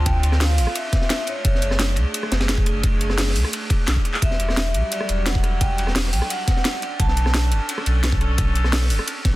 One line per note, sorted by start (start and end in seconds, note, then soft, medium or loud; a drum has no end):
0.00 1.42 C4 medium
0.00 4.18 D4 medium
0.00 1.42 F4 medium
0.06 0.60 D2 loud
0.06 0.42 G5 loud
0.06 kick loud
0.06 closed hi-hat medium
0.06 ride medium
0.23 closed hi-hat medium
0.23 ride medium
0.32 cross-stick soft
0.32 snare soft
0.40 0.76 F5 loud
0.40 snare loud
0.40 closed hi-hat medium
0.40 open hi-hat medium
0.49 snare medium
0.58 0.66 A1 medium
0.58 open hi-hat medium
0.58 ride medium
0.67 cross-stick medium
0.75 1.09 E5 medium
0.75 closed hi-hat medium
0.75 ride loud
0.93 kick loud
0.93 snare soft
0.93 closed hi-hat medium
0.93 ride medium
1.01 snare soft
1.10 1.28 E5 medium
1.10 snare loud
1.10 closed hi-hat medium
1.10 ride medium
1.19 snare soft
1.27 1.93 C#5 medium
1.27 closed hi-hat medium
1.27 ride medium
1.45 1.98 F#1 loud
1.45 4.19 A3 medium
1.45 4.20 G#4 medium
1.45 kick loud
1.45 closed hi-hat loud
1.45 ride medium
1.55 snare soft
1.62 closed hi-hat medium
1.62 ride medium
1.71 cross-stick soft
1.71 snare soft
1.79 snare loud
1.79 closed hi-hat loud
1.79 ride medium
1.88 ride soft
1.96 2.05 C#2 medium
1.96 closed hi-hat medium
1.96 ride medium
2.14 closed hi-hat loud
2.14 ride medium
2.23 cross-stick medium
2.31 2.82 F#1 medium
2.31 snare loud
2.31 closed hi-hat medium
2.31 ride medium
2.40 snare loud
2.40 ride medium
2.49 snare loud
2.49 closed hi-hat medium
2.49 ride medium
2.58 kick loud
2.66 cross-stick soft
2.66 closed hi-hat medium
2.66 ride medium
2.83 3.37 F#1 loud
2.83 kick loud
2.83 closed hi-hat loud
2.83 ride loud
3.01 closed hi-hat medium
3.01 ride medium
3.10 cross-stick soft
3.10 snare soft
3.18 snare loud
3.18 closed hi-hat medium
3.18 open hi-hat medium
3.27 snare medium
3.36 3.44 C#2 medium
3.36 open hi-hat medium
3.36 ride medium
3.45 cross-stick medium
3.53 closed hi-hat loud
3.53 ride medium
3.70 kick loud
3.70 closed hi-hat medium
3.70 ride medium
3.88 3.96 B1 loud
3.88 snare loud
3.88 clap loud
3.88 closed hi-hat loud
3.88 ride medium
3.96 kick medium
4.05 closed hi-hat medium
4.05 ride medium
4.14 clap medium
4.22 4.76 E1 loud
4.22 6.80 F#3 medium
4.22 6.80 G3 medium
4.22 9.36 D4 medium
4.22 4.84 E5 medium
4.22 kick loud
4.22 closed hi-hat loud
4.22 ride medium
4.31 snare soft
4.40 closed hi-hat medium
4.40 ride medium
4.49 cross-stick soft
4.49 snare soft
4.57 snare loud
4.57 closed hi-hat medium
4.57 ride medium
4.66 ride soft
4.74 4.82 B1 medium
4.74 closed hi-hat medium
4.74 ride medium
4.85 4.92 E5 medium
4.92 5.27 D5 medium
4.92 closed hi-hat medium
4.92 ride medium
5.01 cross-stick medium
5.09 5.60 E1 medium
5.09 closed hi-hat medium
5.09 ride medium
5.26 5.62 F#5 loud
5.26 snare loud
5.26 closed hi-hat medium
5.26 ride medium
5.35 kick loud
5.43 cross-stick soft
5.43 closed hi-hat medium
5.43 ride medium
5.61 6.15 E1 loud
5.61 5.93 G5 loud
5.61 kick loud
5.61 closed hi-hat medium
5.61 ride medium
5.78 closed hi-hat medium
5.78 ride medium
5.87 cross-stick soft
5.87 snare soft
5.96 snare loud
5.96 closed hi-hat medium
5.96 open hi-hat medium
6.05 snare medium
6.13 6.21 B1 medium
6.13 6.29 G5 loud
6.13 open hi-hat medium
6.13 ride medium
6.22 cross-stick medium
6.30 7.02 F#5 loud
6.30 closed hi-hat loud
6.30 ride medium
6.48 kick loud
6.48 snare soft
6.48 closed hi-hat medium
6.48 ride medium
6.57 snare soft
6.65 snare loud
6.65 closed hi-hat medium
6.65 ride medium
6.74 snare soft
6.82 9.36 C#4 medium
6.82 9.36 A4 medium
6.82 closed hi-hat medium
6.82 ride medium
7.00 7.53 B1 loud
7.00 7.65 A5 loud
7.00 kick loud
7.00 closed hi-hat medium
7.00 ride medium
7.08 snare soft
7.17 closed hi-hat medium
7.17 ride medium
7.26 cross-stick soft
7.26 snare soft
7.34 snare loud
7.34 closed hi-hat medium
7.34 ride medium
7.44 ride soft
7.52 7.60 F#1 medium
7.52 closed hi-hat medium
7.52 ride medium
7.69 closed hi-hat medium
7.69 ride medium
7.78 cross-stick medium
7.86 8.37 B1 medium
7.86 closed hi-hat medium
7.86 ride medium
8.04 snare loud
8.04 closed hi-hat medium
8.04 ride medium
8.12 kick loud
8.21 cross-stick soft
8.21 closed hi-hat medium
8.21 ride medium
8.38 8.92 B1 loud
8.38 kick loud
8.38 closed hi-hat medium
8.38 ride medium
8.56 closed hi-hat medium
8.56 ride medium
8.64 cross-stick soft
8.64 snare soft
8.73 snare loud
8.73 closed hi-hat medium
8.73 open hi-hat medium
8.82 snare medium
8.90 8.98 F#1 medium
8.90 open hi-hat medium
8.90 ride medium
8.99 cross-stick medium
9.08 closed hi-hat medium
9.08 ride medium
9.25 9.36 A1 medium
9.25 kick loud
9.25 snare soft
9.25 closed hi-hat medium
9.25 ride medium